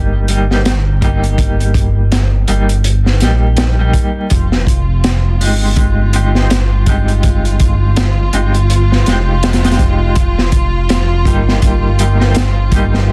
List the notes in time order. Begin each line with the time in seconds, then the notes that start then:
Already playing: G1 G3 A#3 D#4 G4
0.28 G3 A#3 D#4 G4, closed hi-hat
0.50 G3 A#3 D#4 G4, snare
0.65 snare, closed hi-hat
1.01 G3 A#3 D#4 G4, kick, closed hi-hat
1.24 closed hi-hat
1.38 kick, closed hi-hat
1.60 closed hi-hat
1.74 kick, closed hi-hat
2.12 snare, closed hi-hat
2.48 G1 G3 A#3 D#4 G4, closed hi-hat
2.69 closed hi-hat
2.84 closed hi-hat
3.06 snare
3.20 A#1 G3 A#3 D#4 G4, snare, closed hi-hat
3.57 snare, closed hi-hat
3.79 G3 A#3 D#4 G4
3.93 kick, closed hi-hat
4.30 F1 F4, kick, closed hi-hat
4.52 snare
4.67 kick, closed hi-hat
5.04 snare, closed hi-hat
5.41 G1 G#3 C4 D#4 G4, open hi-hat
5.76 kick, closed hi-hat
6.13 G#3 C4 D#4 G4, closed hi-hat
6.35 G#3 C4 D#4 G4, snare
6.50 snare, closed hi-hat
6.86 G#3 C4 D#4 G4, kick, closed hi-hat
7.08 closed hi-hat
7.23 kick, closed hi-hat
7.45 closed hi-hat
7.60 kick, closed hi-hat
7.96 snare, closed hi-hat
8.33 G1 G#3 C4 D#4 G4, closed hi-hat
8.54 closed hi-hat
8.70 closed hi-hat
8.92 snare
9.06 F1 G#3 C4 D#4 G4, snare, closed hi-hat
9.43 snare, closed hi-hat
9.53 snare, closed hi-hat
9.64 G#3 C4 D#4 G4, snare, closed hi-hat
9.71 snare, closed hi-hat
9.79 F1, kick, closed hi-hat
10.15 kick, closed hi-hat
10.38 snare
10.52 kick, closed hi-hat
10.89 snare, closed hi-hat
11.25 G1 G3 A#3 D#4 G4, kick, closed hi-hat
11.49 snare
11.62 kick, closed hi-hat
11.99 G3 A#3 D#4 G4, closed hi-hat
12.20 G3 A#3 D#4 G4, snare
12.35 snare, closed hi-hat
12.71 G3 A#3 D#4 G4, kick, closed hi-hat
12.94 snare